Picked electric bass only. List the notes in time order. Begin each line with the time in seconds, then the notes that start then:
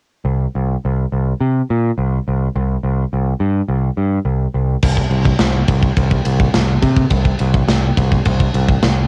0.25 C2
0.55 C2
0.85 C2
1.12 C2
1.40 C3
1.70 A#2
1.98 C2
2.28 C2
2.56 C2
2.83 C2
3.13 C2
3.40 G2
3.69 C2
3.97 G2
4.25 C2
4.54 C2
4.84 C2
5.10 C2
5.40 C2
5.68 C2
5.97 C2
6.25 C2
6.55 C2
6.82 C3
7.11 C2
7.40 C2
7.68 C2
7.97 C2
8.26 C2
8.54 C2
8.82 C2